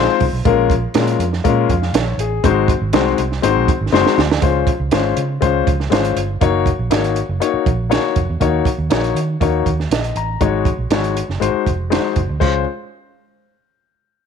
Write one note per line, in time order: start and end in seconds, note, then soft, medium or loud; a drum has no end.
0.00 0.21 G#3 medium
0.00 0.22 C4 medium
0.00 0.22 D#4 medium
0.00 0.22 F4 medium
0.00 0.22 C5 loud
0.20 0.31 C2 loud
0.20 kick medium
0.20 open hi-hat medium
0.33 0.43 B1 medium
0.45 0.85 A#1 loud
0.45 0.71 G#3 loud
0.45 0.71 A#3 medium
0.45 0.72 C#4 medium
0.45 0.72 F4 medium
0.45 0.72 A#4 loud
0.45 kick loud
0.45 closed hi-hat medium
0.70 kick loud
0.70 closed hi-hat medium
0.94 1.15 A#2 loud
0.94 1.21 G#3 medium
0.94 1.21 A#3 medium
0.94 1.21 C#4 medium
0.94 1.21 F4 medium
0.94 1.22 A#4 loud
0.94 snare loud
0.94 closed hi-hat medium
1.07 closed hi-hat medium
1.19 1.39 F2 medium
1.19 closed hi-hat medium
1.33 snare soft
1.44 1.65 A#2 medium
1.44 1.70 G#3 medium
1.44 1.70 A#3 medium
1.44 1.70 C#4 medium
1.44 1.71 F4 medium
1.44 1.70 A#4 loud
1.44 kick loud
1.44 closed hi-hat medium
1.69 1.89 F2 loud
1.69 1.94 F5 medium
1.69 kick medium
1.69 closed hi-hat medium
1.82 snare soft
1.93 2.14 A#1 loud
1.93 2.18 C#5 medium
1.93 snare loud
1.93 closed hi-hat loud
2.18 2.38 A1 medium
2.18 2.67 G#4 medium
2.18 closed hi-hat medium
2.43 2.74 G#1 loud
2.43 2.70 G#3 loud
2.43 2.70 C4 medium
2.43 2.70 D#4 medium
2.43 2.70 F#4 medium
2.43 2.70 C5 loud
2.43 kick loud
2.43 closed hi-hat loud
2.68 kick medium
2.68 closed hi-hat medium
2.81 2.91 G#1 loud
2.93 3.13 C2 loud
2.93 3.19 G#3 loud
2.93 3.19 C4 medium
2.93 3.20 D#4 medium
2.93 3.20 F#4 medium
2.93 3.20 C5 medium
2.93 snare loud
2.93 closed hi-hat medium
3.18 3.38 C2 medium
3.18 closed hi-hat medium
3.32 snare soft
3.42 3.53 G#1 medium
3.42 3.69 G#3 medium
3.42 3.69 C4 medium
3.42 3.69 D#4 medium
3.42 3.69 F#4 medium
3.42 3.69 C5 loud
3.42 closed hi-hat medium
3.55 3.65 A#1 loud
3.68 kick loud
3.68 closed hi-hat medium
3.81 3.91 G#1 medium
3.92 4.03 F#1 loud
3.92 4.19 G#3 loud
3.92 4.19 C4 medium
3.92 4.19 D#4 medium
3.92 4.19 F#4 medium
3.92 4.19 C5 loud
3.92 snare medium
4.06 snare medium
4.18 4.38 D2 loud
4.18 snare medium
4.31 snare loud
4.41 4.62 C#2 loud
4.41 4.68 G#3 medium
4.41 4.68 C#4 medium
4.41 4.69 F4 medium
4.41 4.69 C5 medium
4.41 kick loud
4.41 closed hi-hat loud
4.67 kick loud
4.67 closed hi-hat medium
4.80 4.90 C#2 loud
4.91 5.12 G#1 loud
4.91 5.18 G#3 medium
4.91 5.18 C#4 medium
4.91 5.18 F4 medium
4.91 5.18 C5 medium
4.91 snare loud
4.91 closed hi-hat medium
5.17 5.37 C#3 loud
5.17 closed hi-hat medium
5.41 5.62 C#2 medium
5.41 5.67 G#3 medium
5.41 5.68 C#4 medium
5.41 5.68 F4 medium
5.41 5.68 C5 loud
5.41 kick medium
5.41 closed hi-hat medium
5.67 5.87 C#2 medium
5.67 kick loud
5.67 closed hi-hat medium
5.80 snare soft
5.90 6.11 G#1 medium
5.90 6.17 G#3 medium
5.90 6.17 C#4 medium
5.90 6.18 F4 medium
5.90 6.18 C5 medium
5.90 snare loud
5.90 closed hi-hat medium
6.05 closed hi-hat medium
6.16 6.36 G1 medium
6.16 closed hi-hat medium
6.41 6.72 F#1 loud
6.41 6.67 A#3 medium
6.41 6.68 D#4 medium
6.41 6.68 F#4 medium
6.41 6.68 C#5 loud
6.41 kick loud
6.41 closed hi-hat loud
6.66 kick medium
6.66 closed hi-hat medium
6.79 6.89 A#1 loud
6.90 7.21 G#1 loud
6.90 7.17 A#3 medium
6.90 7.17 D#4 medium
6.90 7.17 F#4 medium
6.90 7.18 C#5 medium
6.90 snare loud
6.90 closed hi-hat loud
7.04 closed hi-hat medium
7.16 closed hi-hat medium
7.29 7.39 F#1 loud
7.40 7.67 A#3 medium
7.40 7.67 D#4 medium
7.40 7.67 F#4 medium
7.40 7.67 C#5 loud
7.40 closed hi-hat medium
7.54 muted fingered electric bass stroke soft
7.66 7.96 A#1 medium
7.66 kick medium
7.66 closed hi-hat medium
7.89 8.16 A#3 medium
7.89 8.16 D#4 medium
7.89 8.17 F#4 medium
7.89 8.17 C#5 loud
7.89 snare loud
7.89 closed hi-hat loud
8.16 8.26 F1 loud
8.16 kick medium
8.16 closed hi-hat medium
8.30 8.39 E2 medium
8.40 8.61 D#2 loud
8.40 8.67 A#3 medium
8.40 8.67 D#4 medium
8.40 8.67 F#4 medium
8.40 8.67 C#5 medium
8.40 kick loud
8.40 closed hi-hat medium
8.65 kick loud
8.65 closed hi-hat medium
8.78 8.88 D#2 medium
8.90 9.11 A#1 loud
8.90 9.16 A#3 medium
8.90 9.17 D#4 medium
8.90 9.17 F#4 medium
8.90 9.17 C#5 medium
8.90 snare loud
8.90 closed hi-hat medium
9.04 closed hi-hat medium
9.15 9.35 D#3 medium
9.15 closed hi-hat medium
9.40 9.61 D#2 medium
9.40 9.67 A#3 medium
9.40 9.67 D#4 medium
9.40 9.67 F#4 medium
9.40 9.68 C#5 medium
9.40 kick loud
9.40 closed hi-hat medium
9.66 9.86 D#2 medium
9.66 kick medium
9.66 closed hi-hat medium
9.80 snare soft
9.91 10.11 A#1 loud
9.91 10.15 D#5 medium
9.91 snare loud
9.91 closed hi-hat loud
10.04 closed hi-hat medium
10.15 10.36 A1 medium
10.15 10.64 A#5 medium
10.15 closed hi-hat medium
10.40 10.71 G#1 medium
10.40 10.67 G#3 medium
10.40 10.67 D#4 medium
10.40 10.67 F#4 medium
10.40 10.67 C#5 medium
10.40 kick loud
10.40 closed hi-hat medium
10.65 kick loud
10.65 closed hi-hat medium
10.78 10.88 A#1 medium
10.90 11.21 G#1 loud
10.90 11.17 G#3 medium
10.90 11.17 D#4 medium
10.90 11.18 F#4 medium
10.90 11.18 C#5 medium
10.90 snare loud
10.90 closed hi-hat medium
11.04 closed hi-hat soft
11.17 closed hi-hat medium
11.29 11.39 F#1 medium
11.29 snare soft
11.40 11.51 G#1 loud
11.40 11.66 G#3 medium
11.40 11.67 D#4 medium
11.40 11.67 F#4 medium
11.40 11.67 C5 medium
11.40 closed hi-hat medium
11.66 11.96 F1 loud
11.66 kick medium
11.66 closed hi-hat medium
11.90 12.16 G#3 medium
11.90 12.17 D#4 medium
11.90 12.17 F#4 medium
11.90 12.17 C5 medium
11.90 snare loud
11.90 closed hi-hat medium
12.16 12.26 F#1 loud
12.16 kick medium
12.16 closed hi-hat medium
12.29 12.39 D2 medium
12.40 12.64 C#2 medium
12.40 12.64 G#3 medium
12.40 12.64 C#4 medium
12.40 12.64 F4 medium
12.40 12.64 C5 loud
12.40 kick loud
12.40 crash medium